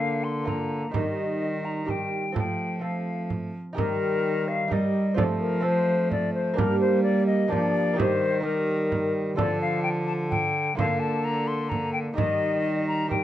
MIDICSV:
0, 0, Header, 1, 6, 480
1, 0, Start_track
1, 0, Tempo, 470588
1, 961, Time_signature, 3, 2, 24, 8
1, 5290, Tempo, 466563
1, 13573, End_track
2, 0, Start_track
2, 0, Title_t, "Flute"
2, 0, Program_c, 0, 73
2, 0, Note_on_c, 0, 77, 90
2, 244, Note_on_c, 0, 84, 81
2, 259, Note_off_c, 0, 77, 0
2, 496, Note_on_c, 0, 82, 72
2, 512, Note_off_c, 0, 84, 0
2, 960, Note_off_c, 0, 82, 0
2, 966, Note_on_c, 0, 75, 82
2, 1682, Note_on_c, 0, 82, 70
2, 1697, Note_off_c, 0, 75, 0
2, 1937, Note_on_c, 0, 79, 74
2, 1952, Note_off_c, 0, 82, 0
2, 2411, Note_off_c, 0, 79, 0
2, 2429, Note_on_c, 0, 79, 75
2, 2879, Note_on_c, 0, 77, 56
2, 2895, Note_off_c, 0, 79, 0
2, 3366, Note_off_c, 0, 77, 0
2, 3850, Note_on_c, 0, 70, 100
2, 4571, Note_on_c, 0, 77, 91
2, 4587, Note_off_c, 0, 70, 0
2, 4817, Note_on_c, 0, 75, 81
2, 4832, Note_off_c, 0, 77, 0
2, 5270, Note_off_c, 0, 75, 0
2, 5276, Note_on_c, 0, 74, 105
2, 5338, Note_off_c, 0, 74, 0
2, 5513, Note_on_c, 0, 70, 84
2, 5756, Note_on_c, 0, 72, 96
2, 5772, Note_off_c, 0, 70, 0
2, 6243, Note_off_c, 0, 72, 0
2, 6249, Note_on_c, 0, 74, 93
2, 6470, Note_off_c, 0, 74, 0
2, 6476, Note_on_c, 0, 72, 91
2, 6722, Note_on_c, 0, 70, 103
2, 6737, Note_off_c, 0, 72, 0
2, 6950, Note_off_c, 0, 70, 0
2, 6956, Note_on_c, 0, 72, 92
2, 7182, Note_off_c, 0, 72, 0
2, 7188, Note_on_c, 0, 74, 94
2, 7421, Note_off_c, 0, 74, 0
2, 7428, Note_on_c, 0, 75, 92
2, 7685, Note_on_c, 0, 74, 91
2, 7701, Note_off_c, 0, 75, 0
2, 8169, Note_off_c, 0, 74, 0
2, 8191, Note_on_c, 0, 72, 102
2, 8628, Note_off_c, 0, 72, 0
2, 8635, Note_on_c, 0, 70, 86
2, 9345, Note_off_c, 0, 70, 0
2, 9583, Note_on_c, 0, 74, 108
2, 9816, Note_off_c, 0, 74, 0
2, 9846, Note_on_c, 0, 77, 94
2, 10061, Note_off_c, 0, 77, 0
2, 10068, Note_on_c, 0, 79, 101
2, 10129, Note_off_c, 0, 79, 0
2, 10312, Note_on_c, 0, 81, 90
2, 10374, Note_off_c, 0, 81, 0
2, 10555, Note_on_c, 0, 79, 99
2, 11030, Note_off_c, 0, 79, 0
2, 11048, Note_on_c, 0, 77, 105
2, 11267, Note_on_c, 0, 81, 94
2, 11283, Note_off_c, 0, 77, 0
2, 11522, Note_on_c, 0, 82, 100
2, 11538, Note_off_c, 0, 81, 0
2, 11759, Note_on_c, 0, 84, 91
2, 11775, Note_off_c, 0, 82, 0
2, 11983, Note_on_c, 0, 82, 86
2, 11999, Note_off_c, 0, 84, 0
2, 12221, Note_off_c, 0, 82, 0
2, 12227, Note_on_c, 0, 79, 87
2, 12289, Note_off_c, 0, 79, 0
2, 12455, Note_on_c, 0, 75, 101
2, 13177, Note_off_c, 0, 75, 0
2, 13202, Note_on_c, 0, 82, 89
2, 13431, Note_off_c, 0, 82, 0
2, 13437, Note_on_c, 0, 79, 89
2, 13573, Note_off_c, 0, 79, 0
2, 13573, End_track
3, 0, Start_track
3, 0, Title_t, "Lute"
3, 0, Program_c, 1, 24
3, 0, Note_on_c, 1, 50, 52
3, 0, Note_on_c, 1, 58, 47
3, 0, Note_on_c, 1, 65, 49
3, 0, Note_on_c, 1, 70, 47
3, 436, Note_off_c, 1, 58, 0
3, 441, Note_off_c, 1, 65, 0
3, 447, Note_off_c, 1, 70, 0
3, 449, Note_on_c, 1, 58, 47
3, 463, Note_on_c, 1, 65, 48
3, 476, Note_on_c, 1, 70, 50
3, 919, Note_off_c, 1, 50, 0
3, 927, Note_off_c, 1, 58, 0
3, 933, Note_on_c, 1, 63, 45
3, 935, Note_off_c, 1, 65, 0
3, 941, Note_off_c, 1, 70, 0
3, 951, Note_on_c, 1, 67, 45
3, 960, Note_on_c, 1, 70, 47
3, 970, Note_on_c, 1, 51, 50
3, 1874, Note_off_c, 1, 63, 0
3, 1883, Note_off_c, 1, 67, 0
3, 1887, Note_off_c, 1, 70, 0
3, 1891, Note_on_c, 1, 63, 42
3, 1902, Note_on_c, 1, 67, 46
3, 1910, Note_on_c, 1, 70, 46
3, 2364, Note_off_c, 1, 51, 0
3, 2364, Note_off_c, 1, 63, 0
3, 2368, Note_on_c, 1, 60, 40
3, 2377, Note_off_c, 1, 67, 0
3, 2381, Note_on_c, 1, 65, 39
3, 2383, Note_off_c, 1, 70, 0
3, 2389, Note_on_c, 1, 69, 40
3, 2407, Note_on_c, 1, 53, 43
3, 2835, Note_off_c, 1, 60, 0
3, 2848, Note_on_c, 1, 60, 38
3, 2852, Note_off_c, 1, 65, 0
3, 2859, Note_off_c, 1, 69, 0
3, 2864, Note_on_c, 1, 65, 35
3, 2871, Note_on_c, 1, 69, 37
3, 3609, Note_off_c, 1, 53, 0
3, 3799, Note_off_c, 1, 60, 0
3, 3803, Note_on_c, 1, 63, 54
3, 3812, Note_off_c, 1, 65, 0
3, 3816, Note_off_c, 1, 69, 0
3, 3820, Note_on_c, 1, 67, 54
3, 3832, Note_on_c, 1, 70, 50
3, 3840, Note_on_c, 1, 51, 61
3, 4756, Note_off_c, 1, 63, 0
3, 4763, Note_off_c, 1, 51, 0
3, 4764, Note_off_c, 1, 67, 0
3, 4770, Note_off_c, 1, 70, 0
3, 4773, Note_on_c, 1, 63, 59
3, 4790, Note_on_c, 1, 67, 51
3, 4802, Note_on_c, 1, 70, 54
3, 4813, Note_on_c, 1, 55, 66
3, 5242, Note_off_c, 1, 63, 0
3, 5246, Note_on_c, 1, 60, 58
3, 5248, Note_off_c, 1, 55, 0
3, 5259, Note_off_c, 1, 67, 0
3, 5263, Note_on_c, 1, 65, 53
3, 5269, Note_off_c, 1, 70, 0
3, 5277, Note_on_c, 1, 69, 52
3, 5289, Note_on_c, 1, 53, 63
3, 5702, Note_off_c, 1, 60, 0
3, 5715, Note_on_c, 1, 60, 53
3, 5716, Note_off_c, 1, 65, 0
3, 5726, Note_off_c, 1, 69, 0
3, 5729, Note_on_c, 1, 65, 52
3, 5739, Note_on_c, 1, 69, 56
3, 6674, Note_off_c, 1, 60, 0
3, 6678, Note_on_c, 1, 58, 59
3, 6682, Note_off_c, 1, 65, 0
3, 6687, Note_off_c, 1, 69, 0
3, 6691, Note_off_c, 1, 53, 0
3, 6698, Note_on_c, 1, 62, 53
3, 6711, Note_on_c, 1, 67, 54
3, 6722, Note_on_c, 1, 55, 61
3, 7637, Note_off_c, 1, 58, 0
3, 7644, Note_off_c, 1, 62, 0
3, 7647, Note_off_c, 1, 55, 0
3, 7649, Note_on_c, 1, 58, 62
3, 7654, Note_off_c, 1, 67, 0
3, 7656, Note_on_c, 1, 62, 57
3, 7668, Note_on_c, 1, 67, 56
3, 7680, Note_on_c, 1, 53, 63
3, 8103, Note_off_c, 1, 58, 0
3, 8116, Note_on_c, 1, 58, 59
3, 8126, Note_off_c, 1, 53, 0
3, 8127, Note_off_c, 1, 62, 0
3, 8131, Note_off_c, 1, 67, 0
3, 8131, Note_on_c, 1, 63, 58
3, 8144, Note_on_c, 1, 67, 62
3, 8160, Note_on_c, 1, 51, 67
3, 8588, Note_off_c, 1, 58, 0
3, 8600, Note_on_c, 1, 58, 55
3, 8604, Note_off_c, 1, 63, 0
3, 8617, Note_on_c, 1, 63, 56
3, 8618, Note_off_c, 1, 67, 0
3, 8630, Note_on_c, 1, 67, 58
3, 9552, Note_off_c, 1, 58, 0
3, 9558, Note_off_c, 1, 51, 0
3, 9560, Note_off_c, 1, 63, 0
3, 9567, Note_off_c, 1, 67, 0
3, 9581, Note_on_c, 1, 65, 55
3, 9595, Note_on_c, 1, 69, 61
3, 9605, Note_on_c, 1, 50, 64
3, 10990, Note_off_c, 1, 65, 0
3, 10997, Note_off_c, 1, 69, 0
3, 11002, Note_off_c, 1, 50, 0
3, 11014, Note_on_c, 1, 58, 57
3, 11031, Note_on_c, 1, 65, 57
3, 11042, Note_on_c, 1, 70, 61
3, 11054, Note_on_c, 1, 50, 61
3, 12425, Note_off_c, 1, 58, 0
3, 12434, Note_off_c, 1, 65, 0
3, 12439, Note_off_c, 1, 70, 0
3, 12440, Note_on_c, 1, 63, 54
3, 12445, Note_off_c, 1, 50, 0
3, 12455, Note_on_c, 1, 67, 54
3, 12469, Note_on_c, 1, 70, 52
3, 12476, Note_on_c, 1, 51, 57
3, 13395, Note_off_c, 1, 63, 0
3, 13406, Note_off_c, 1, 67, 0
3, 13407, Note_on_c, 1, 63, 52
3, 13413, Note_off_c, 1, 70, 0
3, 13421, Note_on_c, 1, 67, 52
3, 13435, Note_on_c, 1, 70, 51
3, 13573, Note_off_c, 1, 51, 0
3, 13573, Note_off_c, 1, 63, 0
3, 13573, Note_off_c, 1, 67, 0
3, 13573, Note_off_c, 1, 70, 0
3, 13573, End_track
4, 0, Start_track
4, 0, Title_t, "Trombone"
4, 0, Program_c, 2, 57
4, 0, Note_on_c, 2, 58, 69
4, 437, Note_off_c, 2, 58, 0
4, 481, Note_on_c, 2, 58, 57
4, 945, Note_off_c, 2, 58, 0
4, 951, Note_on_c, 2, 55, 63
4, 1870, Note_off_c, 2, 55, 0
4, 1915, Note_on_c, 2, 55, 54
4, 2397, Note_on_c, 2, 57, 52
4, 2413, Note_off_c, 2, 55, 0
4, 2880, Note_off_c, 2, 57, 0
4, 2886, Note_on_c, 2, 57, 50
4, 3597, Note_off_c, 2, 57, 0
4, 3850, Note_on_c, 2, 55, 75
4, 4768, Note_off_c, 2, 55, 0
4, 4815, Note_on_c, 2, 55, 71
4, 5289, Note_on_c, 2, 57, 75
4, 5304, Note_off_c, 2, 55, 0
4, 5766, Note_off_c, 2, 57, 0
4, 5772, Note_on_c, 2, 57, 75
4, 6720, Note_on_c, 2, 58, 82
4, 6736, Note_off_c, 2, 57, 0
4, 7673, Note_off_c, 2, 58, 0
4, 7679, Note_on_c, 2, 58, 73
4, 8157, Note_off_c, 2, 58, 0
4, 8167, Note_on_c, 2, 55, 78
4, 8638, Note_off_c, 2, 55, 0
4, 8652, Note_on_c, 2, 55, 72
4, 9616, Note_on_c, 2, 53, 87
4, 9631, Note_off_c, 2, 55, 0
4, 10762, Note_off_c, 2, 53, 0
4, 11052, Note_on_c, 2, 58, 80
4, 11964, Note_off_c, 2, 58, 0
4, 12009, Note_on_c, 2, 58, 69
4, 12469, Note_off_c, 2, 58, 0
4, 12475, Note_on_c, 2, 55, 70
4, 13404, Note_off_c, 2, 55, 0
4, 13446, Note_on_c, 2, 55, 66
4, 13573, Note_off_c, 2, 55, 0
4, 13573, End_track
5, 0, Start_track
5, 0, Title_t, "Cello"
5, 0, Program_c, 3, 42
5, 0, Note_on_c, 3, 50, 70
5, 928, Note_off_c, 3, 50, 0
5, 952, Note_on_c, 3, 51, 65
5, 2355, Note_off_c, 3, 51, 0
5, 2398, Note_on_c, 3, 53, 52
5, 3621, Note_off_c, 3, 53, 0
5, 3857, Note_on_c, 3, 51, 78
5, 4771, Note_off_c, 3, 51, 0
5, 4801, Note_on_c, 3, 55, 66
5, 5285, Note_on_c, 3, 53, 73
5, 5300, Note_off_c, 3, 55, 0
5, 6716, Note_off_c, 3, 53, 0
5, 6723, Note_on_c, 3, 55, 81
5, 7669, Note_off_c, 3, 55, 0
5, 7684, Note_on_c, 3, 53, 68
5, 8174, Note_on_c, 3, 51, 82
5, 8190, Note_off_c, 3, 53, 0
5, 9602, Note_off_c, 3, 51, 0
5, 9608, Note_on_c, 3, 50, 82
5, 11016, Note_off_c, 3, 50, 0
5, 11039, Note_on_c, 3, 50, 81
5, 12450, Note_off_c, 3, 50, 0
5, 12472, Note_on_c, 3, 51, 77
5, 13573, Note_off_c, 3, 51, 0
5, 13573, End_track
6, 0, Start_track
6, 0, Title_t, "Frame drum"
6, 484, Note_on_c, 9, 64, 48
6, 586, Note_off_c, 9, 64, 0
6, 960, Note_on_c, 9, 64, 70
6, 1062, Note_off_c, 9, 64, 0
6, 1922, Note_on_c, 9, 64, 45
6, 2024, Note_off_c, 9, 64, 0
6, 2407, Note_on_c, 9, 64, 69
6, 2509, Note_off_c, 9, 64, 0
6, 3369, Note_on_c, 9, 64, 46
6, 3471, Note_off_c, 9, 64, 0
6, 3857, Note_on_c, 9, 64, 73
6, 3959, Note_off_c, 9, 64, 0
6, 4808, Note_on_c, 9, 64, 54
6, 4910, Note_off_c, 9, 64, 0
6, 5283, Note_on_c, 9, 64, 83
6, 5386, Note_off_c, 9, 64, 0
6, 6245, Note_on_c, 9, 64, 52
6, 6348, Note_off_c, 9, 64, 0
6, 6728, Note_on_c, 9, 64, 77
6, 6831, Note_off_c, 9, 64, 0
6, 7697, Note_on_c, 9, 64, 52
6, 7800, Note_off_c, 9, 64, 0
6, 8181, Note_on_c, 9, 64, 79
6, 8284, Note_off_c, 9, 64, 0
6, 9131, Note_on_c, 9, 64, 54
6, 9233, Note_off_c, 9, 64, 0
6, 9609, Note_on_c, 9, 64, 77
6, 9712, Note_off_c, 9, 64, 0
6, 10571, Note_on_c, 9, 64, 54
6, 10674, Note_off_c, 9, 64, 0
6, 11051, Note_on_c, 9, 64, 76
6, 11154, Note_off_c, 9, 64, 0
6, 12007, Note_on_c, 9, 64, 50
6, 12110, Note_off_c, 9, 64, 0
6, 12485, Note_on_c, 9, 64, 73
6, 12588, Note_off_c, 9, 64, 0
6, 13446, Note_on_c, 9, 64, 50
6, 13548, Note_off_c, 9, 64, 0
6, 13573, End_track
0, 0, End_of_file